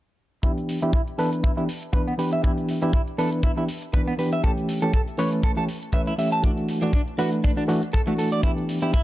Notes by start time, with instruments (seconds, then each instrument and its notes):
0.43 reed electric piano E3 B3 D4 G4, clean electric guitar E4, kick, closed hi-hat
0.58 closed hi-hat
0.69 open hi-hat
0.82 reed electric piano E3 B3 D4 G4, clean electric guitar E4, closed hi-hat
0.93 clean electric guitar E4, kick, closed hi-hat
1.08 closed hi-hat
1.18 reed electric piano E3 B3 D4 B4, clean electric guitar A4, open hi-hat
1.33 closed hi-hat
1.44 clean electric guitar E4, kick, closed hi-hat
1.57 reed electric piano E3 B3 D4 G4, clean electric guitar E4, closed hi-hat
1.69 open hi-hat
1.83 closed hi-hat
1.93 reed electric piano E3 B3 D4 B4, clean electric guitar B4, kick, closed hi-hat
2.08 clean electric guitar B3, closed hi-hat
2.18 reed electric piano E3 B3 D4 G4, clean electric guitar B4, open hi-hat
2.33 clean electric guitar E5, closed hi-hat
2.43 reed electric piano E3 B3 D4 G4, clean electric guitar E4, kick, closed hi-hat
2.58 closed hi-hat
2.69 open hi-hat
2.82 reed electric piano E3 B3 D4 G4, clean electric guitar E4, closed hi-hat
2.93 clean electric guitar E4, kick, closed hi-hat
3.08 closed hi-hat
3.18 reed electric piano E3 B3 D4 B4, clean electric guitar A4, open hi-hat
3.32 closed hi-hat
3.43 clean electric guitar E4, kick, closed hi-hat
3.57 reed electric piano E3 B3 D4 G4, clean electric guitar E4, closed hi-hat
3.68 open hi-hat
3.82 closed hi-hat
3.93 reed electric piano E3 B3 D4 B4, clean electric guitar B4, kick, closed hi-hat
4.08 clean electric guitar B3, closed hi-hat
4.18 reed electric piano E3 B3 D4 G4, clean electric guitar B4, open hi-hat
4.33 clean electric guitar E5, closed hi-hat
4.43 reed electric piano E3 A3 C#4 G4, clean electric guitar A4, kick, closed hi-hat
4.58 closed hi-hat
4.69 open hi-hat
4.82 reed electric piano E3 A3 C#4 G4, clean electric guitar A4, closed hi-hat
4.94 clean electric guitar A4, kick, closed hi-hat
5.08 closed hi-hat
5.18 reed electric piano E3 A3 C#4 B4, clean electric guitar C#5, open hi-hat
5.32 closed hi-hat
5.43 clean electric guitar A4, kick, closed hi-hat
5.57 reed electric piano E3 A3 C#4 G4, clean electric guitar A4, closed hi-hat
5.69 open hi-hat
5.83 closed hi-hat
5.93 reed electric piano E3 A3 C#4 B4, clean electric guitar E5, kick, closed hi-hat
6.07 clean electric guitar E4, closed hi-hat
6.18 reed electric piano E3 A3 C#4 G4, clean electric guitar E5, open hi-hat
6.32 clean electric guitar A5, closed hi-hat
6.43 reed electric piano E3 A3 D4 F#4, clean electric guitar D4, kick, closed hi-hat
6.57 closed hi-hat
6.69 open hi-hat
6.82 reed electric piano E3 A3 D4 F#4, clean electric guitar D4, closed hi-hat
6.93 clean electric guitar D4, kick, closed hi-hat
7.08 closed hi-hat
7.18 reed electric piano E3 A3 D4 B4, clean electric guitar F#4, open hi-hat
7.32 closed hi-hat
7.44 clean electric guitar D4, kick, closed hi-hat
7.57 reed electric piano E3 A3 D4 F#4, clean electric guitar D4, closed hi-hat
7.68 reed electric piano E3 A3 D4 F#4, open hi-hat
7.83 closed hi-hat
7.93 clean electric guitar A4, kick, closed hi-hat
8.07 reed electric piano E3 A3 D4 F#4, clean electric guitar A3, closed hi-hat
8.18 clean electric guitar A4, open hi-hat
8.32 clean electric guitar D5, closed hi-hat
8.43 reed electric piano E3 B3 D4 G4, clean electric guitar E4, kick, closed hi-hat
8.58 closed hi-hat
8.69 open hi-hat
8.82 reed electric piano E3 B3 D4 G4, clean electric guitar E4, closed hi-hat
8.93 clean electric guitar E4, kick, closed hi-hat